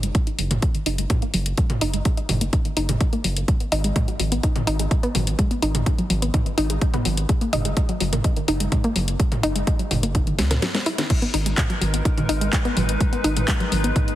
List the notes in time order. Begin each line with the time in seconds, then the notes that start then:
Already playing: F#1
0.03 G#3, closed hi-hat
0.15 G#3, kick, closed hi-hat
0.27 D#4, closed hi-hat
0.39 F#1 F#3, open hi-hat
0.51 A#3, closed hi-hat, mid tom
0.62 kick, closed hi-hat
0.75 D#3, closed hi-hat
0.86 F#1 D#4, open hi-hat
0.98 G#3, closed hi-hat
1.10 G#3, kick, closed hi-hat, mid tom
1.22 A#3, closed hi-hat
1.34 F#1 F#3, open hi-hat
1.46 closed hi-hat
1.57 G#3, kick, closed hi-hat
1.70 A#3, closed hi-hat, mid tom
1.81 F#1 D#4, open hi-hat
1.94 G#3, closed hi-hat
2.05 G#3, kick, closed hi-hat
2.17 D#4, closed hi-hat
2.29 F#1 F#3, mid tom, open hi-hat
2.41 A#3, closed hi-hat
2.53 D#4, kick, closed hi-hat
2.65 D#3, closed hi-hat
2.77 F#1 D#4, open hi-hat
2.89 G#3, closed hi-hat, mid tom
3.01 G#3, kick, closed hi-hat
3.13 A#3, closed hi-hat
3.24 F#1 F#3, open hi-hat
3.37 closed hi-hat
3.48 G#3, kick, closed hi-hat
3.60 B3, closed hi-hat
3.72 G#1 D#4, open hi-hat
3.84 G#3, closed hi-hat
3.96 G#3, kick, closed hi-hat, mid tom
4.08 F#3, closed hi-hat
4.20 G#1 F#3, open hi-hat
4.32 B3, closed hi-hat
4.43 D#4, kick, closed hi-hat
4.56 D#3, closed hi-hat, mid tom
4.67 G#1 D#4, open hi-hat
4.79 G#3, closed hi-hat
4.91 G#3, kick, closed hi-hat
5.03 B3, closed hi-hat
5.15 G#1 F#3, mid tom, open hi-hat
5.27 closed hi-hat
5.39 G#3, kick, closed hi-hat
5.51 B3, closed hi-hat
5.62 G#1 D#4, open hi-hat
5.75 G#3, closed hi-hat, mid tom
5.86 G#3, kick, closed hi-hat
5.98 F#3, closed hi-hat
6.10 G#1 F#3, open hi-hat
6.22 B3, closed hi-hat
6.34 D#4, kick, closed hi-hat, mid tom
6.46 D#3, closed hi-hat
6.58 G#1 D#4, open hi-hat
6.70 G#3, closed hi-hat
6.81 G#3, kick, closed hi-hat
6.94 B3, closed hi-hat, mid tom
7.05 G#1 F#3, open hi-hat
7.17 closed hi-hat
7.29 G#3, kick, closed hi-hat
7.41 A#3, closed hi-hat
7.53 F#1 D#4, mid tom, open hi-hat
7.65 G#3, closed hi-hat
7.77 G#3, kick, closed hi-hat
7.89 F#3, closed hi-hat
8.00 F#1 F#3, open hi-hat
8.13 A#3, closed hi-hat, mid tom
8.24 D#4, kick, closed hi-hat
8.36 D#3, closed hi-hat
8.48 F#1 D#4, open hi-hat
8.60 G#3, closed hi-hat
8.72 G#3, kick, closed hi-hat, mid tom
8.84 A#3, closed hi-hat
8.96 F#1 F#3, open hi-hat
9.08 closed hi-hat
9.20 G#3, kick, closed hi-hat
9.32 A#3, closed hi-hat, mid tom
9.43 F#1 D#4, open hi-hat
9.55 G#3, closed hi-hat
9.67 G#3, kick, closed hi-hat
9.79 F#3, closed hi-hat
9.91 F#1 F#3, mid tom, open hi-hat
10.03 A#3, closed hi-hat
10.15 D#4, kick, closed hi-hat
10.27 D#3, closed hi-hat
10.39 C#2 G#3, snare, open hi-hat
10.51 A#4, snare, closed hi-hat, mid tom
10.62 F#3, snare, closed hi-hat
10.75 G#3, snare, closed hi-hat
10.86 E4, open hi-hat
10.98 D#3, snare, closed hi-hat
11.10 G#3 D#4 A#4 B4, kick, closed hi-hat, crash
11.22 B3, closed hi-hat
11.34 G#1 D#4, open hi-hat
11.46 G#3, closed hi-hat
11.58 G#3, kick, clap, closed hi-hat, mid tom
11.70 F#3, closed hi-hat
11.81 G#1 F#3, open hi-hat
11.94 B3, closed hi-hat
12.05 D#4, kick, closed hi-hat
12.17 D#3, closed hi-hat, mid tom
12.29 G#1 D#4, open hi-hat
12.41 G#3, closed hi-hat
12.53 G#3, kick, clap, closed hi-hat
12.65 B3, closed hi-hat
12.77 G#1 F#3, mid tom, open hi-hat
12.89 closed hi-hat
13.00 G#3 G#4, kick, closed hi-hat
13.13 B3, closed hi-hat
13.24 G#1 D#4, open hi-hat
13.37 G#3, closed hi-hat, mid tom
13.48 G#3, kick, clap, closed hi-hat
13.60 F#3, closed hi-hat
13.72 G#1 F#3, open hi-hat
13.84 B3, closed hi-hat
13.96 D#4, kick, closed hi-hat, mid tom
14.08 D#3, closed hi-hat